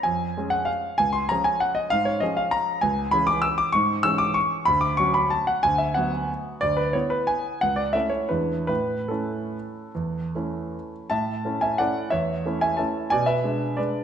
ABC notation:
X:1
M:3/4
L:1/8
Q:1/4=185
K:Db
V:1 name="Grand piano"
a3 g f2 | a c' b a g e | f d e f b2 | [K:A] g2 b d' e' d' |
c'2 e' d' c'2 | b d' c' b a f | g e f z3 | d B c B g2 |
f d e c B2 | B2 A4- | A4- A z | [ea]3 [eg] [df]2 |
[ce]3 [eg] [ea]2 | [dg] [Be]3 [Bd]2 |]
V:2 name="Grand piano"
F,,2 [A,DA]4 | D,,2 [F,DA]4 | A,,2 [F,DA]4 | [K:A] C,,2 [E,CG]4 |
G,,2 [E,CG]4 | D,,2 [F,CF]4 | D,,2 [F,B,F]4 | D,,2 [B,E]4 |
C,,2 [A,CE]2 [E,,G,DE]2 | A,,2 [A,CE]4 | E,,2 [A,CE]4 | A,,2 [A,CE]2 [A,CE]2 |
E,,2 [A,CE]2 [A,CE]2 | B,,2 [G,D]2 [G,D]2 |]